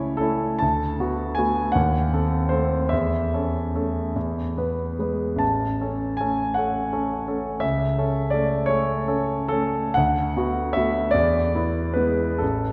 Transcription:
grand piano
Already playing: C#2 A3 C#4 E4 C#5 D5 E5
0.17 A3 C#4 A4
0.21 E4
0.59 D2 A5
1.00 B3 F#4
1.35 A3 B3 F#4 G#5
1.72 D#2 F#5
2.13 C4 A4
2.49 A3 C4 A4 C5
2.89 E2 E5
3.34 C#4 A4
3.75 A3 C#4 A4
4.16 E2
4.58 B3 B4
4.99 G#3 B3 B4
5.36 A1 A5
5.81 C#4 A4
6.17 A3 C#4 A4 G#5
6.54 A3 C#4 F#5
6.59 A4
6.93 C#4 A4
7.27 A3 C#4 A4
7.60 C#2 E5
7.98 C#4 A4
8.30 A3 C#4 A4 D5
8.66 A3 C#5
8.70 C#4 A4
9.08 C#4 A4
9.48 A3 C#4 A4
9.94 D2 F#5
10.37 B3 F#4
10.73 A3 B3 F#4 E5
11.11 E2 D5
11.55 B3 E4
11.94 G#3 B3 E4 B4
12.38 A1 A4

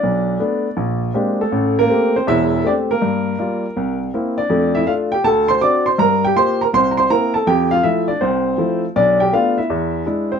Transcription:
upright piano
Already playing: D4 D5
0.03 B1
0.39 A3 B3 D4
0.77 A#1
1.14 G#3 A#3 C4 D4 G4
1.41 A3 A4
1.52 A1
1.79 A#3 A#4
1.90 A3 C4 G4
2.16 C4 C5
2.27 E1 E2 E4 E5
2.64 A3 C4 D4 G4 D5
2.91 A#3 A#4
3.02 G2
3.39 G3 A#3 F4
3.77 C2
4.14 A#3 C4 E4
4.38 D4 D5
4.50 F2 A3
4.75 E4 E5
4.86 A3 D4 F4 F5
5.12 G4 G5
5.24 D2 A4 A5
5.48 C5 C6
5.61 C4 D4 F#4 D5 D6
5.86 C5 C6
5.98 G2 A#4 A#5
6.24 G4 G5
6.36 A#3 F4 G4 C5 C6
6.61 A#4 A#5
6.73 C2 C5 C6
6.91 A#5
6.97 C5 C6
7.10 A#3 C4 E4 A#4 A#5
7.34 A4 A5
7.47 F2 G4 G5
7.71 F4 F5
7.83 F3 A3 E4 E5
8.08 D4 D5
8.21 C2 C4 C5
8.58 F3 A3 E4
8.96 B1 D4 D5
9.20 G4 G5
9.32 A3 B3 D4 F4 F5
9.58 E4 E5
9.70 E2
10.06 G#3 D4 E4
10.32 C4 C5

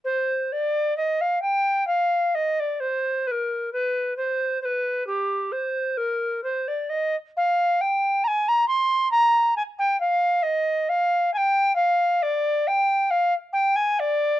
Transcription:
recorder
0.04 C5
0.52 D5
0.97 D#5
1.21 F5
1.42 G5
1.87 F5
2.35 D#5
2.60 D5
2.80 C5
3.27 B4
3.31 A#4
3.73 B4
4.17 C5
4.62 B4 C5
5.06 G4
5.52 C5
5.97 A#4
6.43 C5
6.68 D5
6.89 D#5
7.37 F5
7.81 G5
8.24 G#5 A#5
8.48 A#5
8.68 C6
9.11 A#5
9.56 G#5
9.79 G5
10.00 F5
10.43 D#5
10.89 F5
11.34 G5 G#5
11.75 F5
12.22 D5
12.67 G5
13.11 F5
13.53 G5
13.76 G#5
14.00 D5

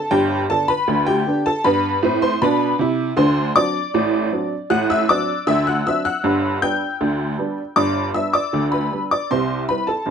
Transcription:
honky-tonk piano
Already playing: A4 A5
0.11 G1 G2 G4 G5
0.50 D3 B3 D4 A4 A5
0.68 B4 B5
0.88 D2 D3
1.06 G4 G5
1.27 D3 B3 D4
1.46 A4 A5
1.64 G2 B3 B4 B5
2.03 A2 C4
2.22 C5 C6
2.42 B2 D4 B4 B5
2.79 C3 E4
3.17 D2 D3 C5 C6
3.56 F#3 C4 D4 D5 D6
3.94 A1 A2
4.32 F#3 C4 D4
4.70 A1 A2 F#5 F#6
4.90 E5 E6
5.09 F#3 C4 D4 D5 D6
5.47 D2 D3 E5 E6
5.67 F#5 F#6
5.87 F#3 C4 D4 E5 E6
6.05 F#5 F#6
6.24 G1 G2
6.62 G3 B3 D4 G5 G6
7.01 D2 D3
7.38 G3 B3 D4
7.76 G1 G2 D5 D6
8.14 G3 B3 D4 E5 E6
8.34 D5 D6
8.53 D2 D3
8.72 B4 B5
8.92 G3 B3 D4
9.11 D5 D6
9.31 C2 C3 C5 C6
9.69 G3 C4 E4 B4 B5
9.87 A4 A5
10.06 G1 G2

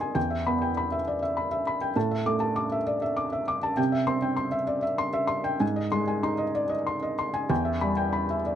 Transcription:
felt piano
Already playing: G#2 C4 D5 D#5 C6
0.00 G#5
0.15 E2 G5
0.30 E5
0.47 B3 B5
0.62 G5
0.77 B5
0.92 E5
1.07 D5
1.23 E5
1.37 B5
1.51 E5
1.67 B5
1.81 G5
1.96 A2 A5
2.11 E5
2.26 A3 D6
2.40 A5
2.56 D6
2.72 E5
2.87 D5
3.02 E5
3.17 D6
3.33 E5
3.48 D6
3.63 A5
3.77 C3 G5
3.92 E5
4.07 C4 C6
4.22 G5
4.36 C6
4.52 E5
4.67 D5
4.82 E5
4.98 C6
5.13 E5
5.27 C6
5.44 G5
5.60 G#2 G#5
5.76 D#5
5.92 G#3 C6
6.08 G#5
6.23 D#4 C6
6.38 D#5
6.55 D5
6.69 D#5
6.87 C6
7.03 D#5
7.19 C6
7.34 G#5
7.50 E2 G5
7.65 E5
7.81 G3 B5
7.97 G5
8.13 B5
8.30 E5
8.46 D5

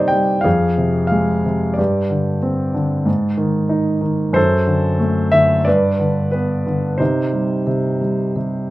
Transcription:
grand piano
Already playing: C3 G3 D#4 G4 C5 D#5
0.00 D5
0.08 G5
0.12 G3
0.41 G#4 F5
0.45 F2
0.78 C3
1.07 F5
1.12 G#3
1.45 C3
1.74 G4 D5
1.78 G2
2.10 D3
2.42 C4
2.74 D3
3.06 G#2
3.37 D#3
3.69 D#4
4.01 D#3
4.33 F#2 A4 C5
4.67 D3
4.99 A3
5.32 D3 E5
5.65 G2 B4 D5
6.00 D3
6.31 B3 B4
6.67 D3
6.98 C3 D#4 C5
7.33 G3
7.67 C3
8.01 G3
8.36 C3

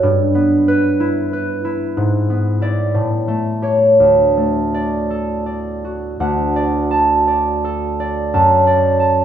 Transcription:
harp
0.03 G2
0.35 B3
0.68 B4
1.00 E4
1.33 B4
1.65 E4
1.97 G#2
2.30 B3
2.61 E4 D5
2.94 A2
3.28 A3
3.62 G4 C#5
4.00 D2
4.37 A3
4.74 D5
5.10 A4
5.46 D5
5.85 F#4
6.20 D2 F#5
6.56 D5
6.91 A5
7.28 D5
7.65 A4
8.00 D5
8.34 F#2 A5
8.67 D5
9.00 A5

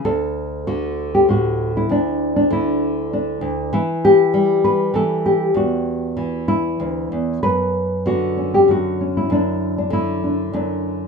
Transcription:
nylon-string guitar
0.05 D2 A4
0.67 D3 F#4
1.15 G4
1.29 A2 F#4
1.77 E4
1.89 D2 D4
2.36 D4
2.51 D3 E4
3.13 D4
3.41 D2
3.73 E3 E4
4.05 G4
4.34 G3
4.64 B4
4.94 E3 A4
5.26 G4
5.54 E2 F#4
6.17 E3
6.48 E4
6.80 D2
7.12 E2
7.43 F#2 B4
8.06 D3 F#4
8.37 C#4
8.54 G4
8.68 F#2 F#4
9.01 C#4
9.17 E4
9.30 F#2 D4
9.78 D4
9.90 D3 E4
10.24 D4
10.53 F#2 D4

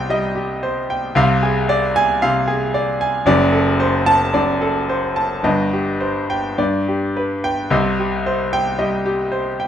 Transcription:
grand piano
Already playing: C2 C3 G4 C5 D#5 G5
0.10 G3 D#5
0.35 G4
0.63 C5
0.90 G5
1.15 C2 C3 F5
1.43 G#4
1.69 D5
1.96 G#5
2.22 C3 F5
2.48 G#4
2.74 D5
3.01 G#5
3.26 F#1 F#2 D5
3.52 A4
3.80 C5
4.06 A5
4.34 F#2 D5
4.61 A4
4.89 C5
5.16 A5
5.43 G1 G2 D#5
5.73 G4
6.00 C5
6.30 G5
6.58 G2 D5
6.88 G4
7.17 B4
7.44 G5
7.70 C2 C3 D#5
7.99 G4
8.26 C5
8.53 G5
8.79 G3 D#5
9.06 G4
9.32 C5
9.60 G5

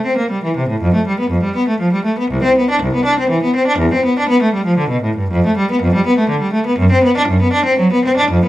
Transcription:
cello
0.06 C4
0.17 A#3
0.30 G3
0.44 E3
0.57 C3
0.69 A2
0.81 F2
0.94 A3
1.07 G3
1.20 B3
1.30 F2
1.43 G3
1.56 B3
1.68 A3
1.80 F3
1.93 G3
2.05 A3
2.19 B3
2.31 C2
2.43 C4
2.58 B3
2.70 D4
2.83 C2
2.94 B3
3.05 D4
3.19 C4
3.30 E3
3.43 B3
3.56 C4
3.67 D4
3.78 E2
3.93 C4
4.05 B3
4.19 D4
4.29 B3
4.42 A3
4.54 G3
4.65 F3
4.78 D3
4.89 B2
5.03 A2
5.17 G2
5.31 F2
5.46 A3
5.57 G3
5.71 B3
5.82 F2
5.94 G3
6.06 B3
6.18 A3
6.30 D3
6.41 G3
6.53 A3
6.66 B3
6.79 F#2
6.92 C4
7.04 B3
7.17 D4
7.28 F#2
7.42 B3
7.53 D4
7.65 C4
7.79 F#3
7.92 B3
8.05 C4
8.17 D4
8.31 F2
8.45 B3

